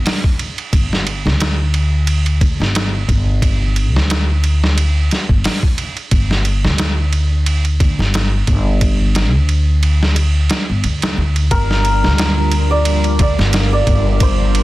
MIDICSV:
0, 0, Header, 1, 5, 480
1, 0, Start_track
1, 0, Key_signature, -2, "minor"
1, 0, Tempo, 674157
1, 515, Time_signature, 4, 2, 24, 8
1, 10417, End_track
2, 0, Start_track
2, 0, Title_t, "Santur"
2, 0, Program_c, 0, 15
2, 8195, Note_on_c, 0, 70, 98
2, 9047, Note_on_c, 0, 74, 92
2, 9401, Note_off_c, 0, 74, 0
2, 9404, Note_on_c, 0, 74, 87
2, 9771, Note_off_c, 0, 74, 0
2, 9774, Note_on_c, 0, 74, 89
2, 10127, Note_on_c, 0, 72, 93
2, 10209, Note_off_c, 0, 70, 0
2, 10417, Note_off_c, 0, 72, 0
2, 10417, Note_off_c, 0, 74, 0
2, 10417, End_track
3, 0, Start_track
3, 0, Title_t, "String machine"
3, 0, Program_c, 1, 50
3, 8185, Note_on_c, 1, 55, 76
3, 8187, Note_on_c, 1, 62, 66
3, 8190, Note_on_c, 1, 65, 69
3, 8190, Note_on_c, 1, 70, 84
3, 10417, Note_off_c, 1, 55, 0
3, 10417, Note_off_c, 1, 62, 0
3, 10417, Note_off_c, 1, 65, 0
3, 10417, Note_off_c, 1, 70, 0
3, 10417, End_track
4, 0, Start_track
4, 0, Title_t, "Upright bass"
4, 0, Program_c, 2, 32
4, 521, Note_on_c, 2, 31, 80
4, 894, Note_on_c, 2, 38, 93
4, 905, Note_off_c, 2, 31, 0
4, 1698, Note_off_c, 2, 38, 0
4, 1717, Note_on_c, 2, 38, 86
4, 1833, Note_off_c, 2, 38, 0
4, 1851, Note_on_c, 2, 31, 87
4, 2176, Note_off_c, 2, 31, 0
4, 2200, Note_on_c, 2, 31, 89
4, 2807, Note_off_c, 2, 31, 0
4, 2807, Note_on_c, 2, 38, 91
4, 3614, Note_off_c, 2, 38, 0
4, 3770, Note_on_c, 2, 31, 80
4, 3864, Note_off_c, 2, 31, 0
4, 4357, Note_on_c, 2, 31, 87
4, 4729, Note_on_c, 2, 38, 90
4, 4740, Note_off_c, 2, 31, 0
4, 5535, Note_off_c, 2, 38, 0
4, 5557, Note_on_c, 2, 38, 94
4, 5673, Note_off_c, 2, 38, 0
4, 5689, Note_on_c, 2, 31, 93
4, 6015, Note_off_c, 2, 31, 0
4, 6037, Note_on_c, 2, 31, 97
4, 6649, Note_off_c, 2, 31, 0
4, 6649, Note_on_c, 2, 38, 101
4, 7455, Note_off_c, 2, 38, 0
4, 7615, Note_on_c, 2, 31, 83
4, 7706, Note_off_c, 2, 31, 0
4, 7719, Note_on_c, 2, 38, 80
4, 7931, Note_off_c, 2, 38, 0
4, 7958, Note_on_c, 2, 38, 89
4, 8171, Note_off_c, 2, 38, 0
4, 8197, Note_on_c, 2, 31, 90
4, 8571, Note_on_c, 2, 38, 94
4, 8582, Note_off_c, 2, 31, 0
4, 9376, Note_off_c, 2, 38, 0
4, 9398, Note_on_c, 2, 38, 94
4, 9513, Note_off_c, 2, 38, 0
4, 9531, Note_on_c, 2, 31, 96
4, 9856, Note_off_c, 2, 31, 0
4, 9877, Note_on_c, 2, 31, 94
4, 10417, Note_off_c, 2, 31, 0
4, 10417, End_track
5, 0, Start_track
5, 0, Title_t, "Drums"
5, 40, Note_on_c, 9, 46, 77
5, 48, Note_on_c, 9, 38, 113
5, 111, Note_off_c, 9, 46, 0
5, 119, Note_off_c, 9, 38, 0
5, 171, Note_on_c, 9, 36, 92
5, 242, Note_off_c, 9, 36, 0
5, 281, Note_on_c, 9, 51, 60
5, 352, Note_off_c, 9, 51, 0
5, 414, Note_on_c, 9, 51, 41
5, 485, Note_off_c, 9, 51, 0
5, 519, Note_on_c, 9, 36, 105
5, 519, Note_on_c, 9, 51, 82
5, 590, Note_off_c, 9, 36, 0
5, 590, Note_off_c, 9, 51, 0
5, 662, Note_on_c, 9, 38, 38
5, 733, Note_off_c, 9, 38, 0
5, 759, Note_on_c, 9, 51, 61
5, 830, Note_off_c, 9, 51, 0
5, 902, Note_on_c, 9, 38, 44
5, 973, Note_off_c, 9, 38, 0
5, 1000, Note_on_c, 9, 51, 81
5, 1008, Note_on_c, 9, 38, 97
5, 1071, Note_off_c, 9, 51, 0
5, 1079, Note_off_c, 9, 38, 0
5, 1238, Note_on_c, 9, 51, 62
5, 1309, Note_off_c, 9, 51, 0
5, 1475, Note_on_c, 9, 51, 83
5, 1547, Note_off_c, 9, 51, 0
5, 1610, Note_on_c, 9, 51, 42
5, 1681, Note_off_c, 9, 51, 0
5, 1717, Note_on_c, 9, 36, 84
5, 1718, Note_on_c, 9, 51, 61
5, 1788, Note_off_c, 9, 36, 0
5, 1789, Note_off_c, 9, 51, 0
5, 1862, Note_on_c, 9, 38, 40
5, 1934, Note_off_c, 9, 38, 0
5, 1959, Note_on_c, 9, 51, 88
5, 1967, Note_on_c, 9, 38, 103
5, 2030, Note_off_c, 9, 51, 0
5, 2038, Note_off_c, 9, 38, 0
5, 2197, Note_on_c, 9, 36, 87
5, 2199, Note_on_c, 9, 51, 60
5, 2268, Note_off_c, 9, 36, 0
5, 2270, Note_off_c, 9, 51, 0
5, 2436, Note_on_c, 9, 36, 109
5, 2438, Note_on_c, 9, 51, 83
5, 2508, Note_off_c, 9, 36, 0
5, 2509, Note_off_c, 9, 51, 0
5, 2678, Note_on_c, 9, 51, 65
5, 2750, Note_off_c, 9, 51, 0
5, 2822, Note_on_c, 9, 38, 51
5, 2893, Note_off_c, 9, 38, 0
5, 2920, Note_on_c, 9, 51, 81
5, 2928, Note_on_c, 9, 38, 106
5, 2991, Note_off_c, 9, 51, 0
5, 2999, Note_off_c, 9, 38, 0
5, 3159, Note_on_c, 9, 51, 66
5, 3230, Note_off_c, 9, 51, 0
5, 3301, Note_on_c, 9, 38, 52
5, 3372, Note_off_c, 9, 38, 0
5, 3400, Note_on_c, 9, 51, 89
5, 3472, Note_off_c, 9, 51, 0
5, 3641, Note_on_c, 9, 51, 64
5, 3649, Note_on_c, 9, 38, 34
5, 3712, Note_off_c, 9, 51, 0
5, 3720, Note_off_c, 9, 38, 0
5, 3768, Note_on_c, 9, 36, 95
5, 3839, Note_off_c, 9, 36, 0
5, 3876, Note_on_c, 9, 46, 76
5, 3884, Note_on_c, 9, 38, 114
5, 3947, Note_off_c, 9, 46, 0
5, 3955, Note_off_c, 9, 38, 0
5, 4008, Note_on_c, 9, 36, 92
5, 4079, Note_off_c, 9, 36, 0
5, 4115, Note_on_c, 9, 51, 68
5, 4186, Note_off_c, 9, 51, 0
5, 4249, Note_on_c, 9, 51, 40
5, 4320, Note_off_c, 9, 51, 0
5, 4353, Note_on_c, 9, 51, 85
5, 4355, Note_on_c, 9, 36, 106
5, 4424, Note_off_c, 9, 51, 0
5, 4426, Note_off_c, 9, 36, 0
5, 4492, Note_on_c, 9, 38, 38
5, 4563, Note_off_c, 9, 38, 0
5, 4592, Note_on_c, 9, 51, 64
5, 4664, Note_off_c, 9, 51, 0
5, 4732, Note_on_c, 9, 38, 46
5, 4803, Note_off_c, 9, 38, 0
5, 4830, Note_on_c, 9, 51, 80
5, 4838, Note_on_c, 9, 38, 106
5, 4901, Note_off_c, 9, 51, 0
5, 4909, Note_off_c, 9, 38, 0
5, 5074, Note_on_c, 9, 51, 63
5, 5145, Note_off_c, 9, 51, 0
5, 5314, Note_on_c, 9, 51, 87
5, 5385, Note_off_c, 9, 51, 0
5, 5445, Note_on_c, 9, 51, 42
5, 5517, Note_off_c, 9, 51, 0
5, 5555, Note_on_c, 9, 36, 89
5, 5555, Note_on_c, 9, 51, 66
5, 5626, Note_off_c, 9, 36, 0
5, 5627, Note_off_c, 9, 51, 0
5, 5699, Note_on_c, 9, 38, 40
5, 5770, Note_off_c, 9, 38, 0
5, 5796, Note_on_c, 9, 51, 85
5, 5803, Note_on_c, 9, 38, 110
5, 5867, Note_off_c, 9, 51, 0
5, 5875, Note_off_c, 9, 38, 0
5, 6033, Note_on_c, 9, 51, 67
5, 6035, Note_on_c, 9, 36, 88
5, 6104, Note_off_c, 9, 51, 0
5, 6106, Note_off_c, 9, 36, 0
5, 6274, Note_on_c, 9, 51, 86
5, 6275, Note_on_c, 9, 36, 114
5, 6345, Note_off_c, 9, 51, 0
5, 6346, Note_off_c, 9, 36, 0
5, 6515, Note_on_c, 9, 51, 75
5, 6523, Note_on_c, 9, 38, 97
5, 6586, Note_off_c, 9, 51, 0
5, 6594, Note_off_c, 9, 38, 0
5, 6755, Note_on_c, 9, 51, 59
5, 6827, Note_off_c, 9, 51, 0
5, 6997, Note_on_c, 9, 51, 63
5, 7068, Note_off_c, 9, 51, 0
5, 7139, Note_on_c, 9, 38, 54
5, 7210, Note_off_c, 9, 38, 0
5, 7235, Note_on_c, 9, 51, 90
5, 7306, Note_off_c, 9, 51, 0
5, 7473, Note_on_c, 9, 51, 76
5, 7480, Note_on_c, 9, 38, 104
5, 7544, Note_off_c, 9, 51, 0
5, 7552, Note_off_c, 9, 38, 0
5, 7716, Note_on_c, 9, 51, 61
5, 7787, Note_off_c, 9, 51, 0
5, 7848, Note_on_c, 9, 51, 72
5, 7856, Note_on_c, 9, 38, 93
5, 7920, Note_off_c, 9, 51, 0
5, 7927, Note_off_c, 9, 38, 0
5, 8088, Note_on_c, 9, 51, 60
5, 8159, Note_off_c, 9, 51, 0
5, 8196, Note_on_c, 9, 36, 102
5, 8196, Note_on_c, 9, 51, 86
5, 8267, Note_off_c, 9, 36, 0
5, 8267, Note_off_c, 9, 51, 0
5, 8335, Note_on_c, 9, 38, 42
5, 8406, Note_off_c, 9, 38, 0
5, 8435, Note_on_c, 9, 51, 66
5, 8506, Note_off_c, 9, 51, 0
5, 8575, Note_on_c, 9, 38, 44
5, 8646, Note_off_c, 9, 38, 0
5, 8675, Note_on_c, 9, 51, 80
5, 8683, Note_on_c, 9, 38, 115
5, 8746, Note_off_c, 9, 51, 0
5, 8754, Note_off_c, 9, 38, 0
5, 8911, Note_on_c, 9, 51, 70
5, 8982, Note_off_c, 9, 51, 0
5, 9151, Note_on_c, 9, 51, 90
5, 9223, Note_off_c, 9, 51, 0
5, 9286, Note_on_c, 9, 51, 41
5, 9357, Note_off_c, 9, 51, 0
5, 9392, Note_on_c, 9, 51, 70
5, 9395, Note_on_c, 9, 36, 91
5, 9463, Note_off_c, 9, 51, 0
5, 9466, Note_off_c, 9, 36, 0
5, 9535, Note_on_c, 9, 38, 41
5, 9607, Note_off_c, 9, 38, 0
5, 9633, Note_on_c, 9, 51, 91
5, 9641, Note_on_c, 9, 38, 120
5, 9704, Note_off_c, 9, 51, 0
5, 9712, Note_off_c, 9, 38, 0
5, 9875, Note_on_c, 9, 36, 89
5, 9875, Note_on_c, 9, 51, 64
5, 9946, Note_off_c, 9, 51, 0
5, 9947, Note_off_c, 9, 36, 0
5, 10113, Note_on_c, 9, 51, 88
5, 10115, Note_on_c, 9, 36, 109
5, 10184, Note_off_c, 9, 51, 0
5, 10187, Note_off_c, 9, 36, 0
5, 10358, Note_on_c, 9, 51, 71
5, 10417, Note_off_c, 9, 51, 0
5, 10417, End_track
0, 0, End_of_file